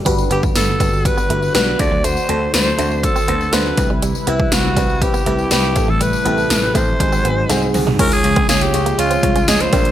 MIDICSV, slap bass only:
0, 0, Header, 1, 2, 480
1, 0, Start_track
1, 0, Tempo, 495868
1, 58, Time_signature, 4, 2, 24, 8
1, 9598, End_track
2, 0, Start_track
2, 0, Title_t, "Slap bass"
2, 0, Program_c, 0, 36
2, 58, Note_on_c, 0, 31, 92
2, 231, Note_off_c, 0, 31, 0
2, 298, Note_on_c, 0, 31, 100
2, 471, Note_off_c, 0, 31, 0
2, 538, Note_on_c, 0, 31, 95
2, 711, Note_off_c, 0, 31, 0
2, 775, Note_on_c, 0, 31, 92
2, 1036, Note_off_c, 0, 31, 0
2, 1259, Note_on_c, 0, 31, 87
2, 1431, Note_off_c, 0, 31, 0
2, 1498, Note_on_c, 0, 35, 92
2, 1671, Note_off_c, 0, 35, 0
2, 1739, Note_on_c, 0, 38, 94
2, 2084, Note_off_c, 0, 38, 0
2, 2219, Note_on_c, 0, 38, 87
2, 2391, Note_off_c, 0, 38, 0
2, 2459, Note_on_c, 0, 38, 95
2, 2631, Note_off_c, 0, 38, 0
2, 2697, Note_on_c, 0, 38, 94
2, 2957, Note_off_c, 0, 38, 0
2, 3178, Note_on_c, 0, 38, 98
2, 3351, Note_off_c, 0, 38, 0
2, 3417, Note_on_c, 0, 38, 83
2, 3590, Note_off_c, 0, 38, 0
2, 3657, Note_on_c, 0, 36, 103
2, 4003, Note_off_c, 0, 36, 0
2, 4137, Note_on_c, 0, 36, 92
2, 4310, Note_off_c, 0, 36, 0
2, 4377, Note_on_c, 0, 36, 103
2, 4550, Note_off_c, 0, 36, 0
2, 4613, Note_on_c, 0, 36, 90
2, 4874, Note_off_c, 0, 36, 0
2, 5095, Note_on_c, 0, 36, 91
2, 5269, Note_off_c, 0, 36, 0
2, 5336, Note_on_c, 0, 36, 86
2, 5576, Note_off_c, 0, 36, 0
2, 5576, Note_on_c, 0, 33, 95
2, 5922, Note_off_c, 0, 33, 0
2, 6055, Note_on_c, 0, 33, 93
2, 6229, Note_off_c, 0, 33, 0
2, 6295, Note_on_c, 0, 33, 98
2, 6469, Note_off_c, 0, 33, 0
2, 6533, Note_on_c, 0, 33, 93
2, 6708, Note_off_c, 0, 33, 0
2, 6777, Note_on_c, 0, 32, 105
2, 6950, Note_off_c, 0, 32, 0
2, 7017, Note_on_c, 0, 32, 101
2, 7190, Note_off_c, 0, 32, 0
2, 7256, Note_on_c, 0, 36, 86
2, 7430, Note_off_c, 0, 36, 0
2, 7497, Note_on_c, 0, 36, 86
2, 7670, Note_off_c, 0, 36, 0
2, 7738, Note_on_c, 0, 37, 96
2, 7911, Note_off_c, 0, 37, 0
2, 7977, Note_on_c, 0, 37, 99
2, 8150, Note_off_c, 0, 37, 0
2, 8218, Note_on_c, 0, 37, 107
2, 8391, Note_off_c, 0, 37, 0
2, 8457, Note_on_c, 0, 37, 92
2, 8630, Note_off_c, 0, 37, 0
2, 8696, Note_on_c, 0, 37, 109
2, 8870, Note_off_c, 0, 37, 0
2, 8936, Note_on_c, 0, 36, 93
2, 9110, Note_off_c, 0, 36, 0
2, 9178, Note_on_c, 0, 37, 97
2, 9350, Note_off_c, 0, 37, 0
2, 9417, Note_on_c, 0, 34, 93
2, 9598, Note_off_c, 0, 34, 0
2, 9598, End_track
0, 0, End_of_file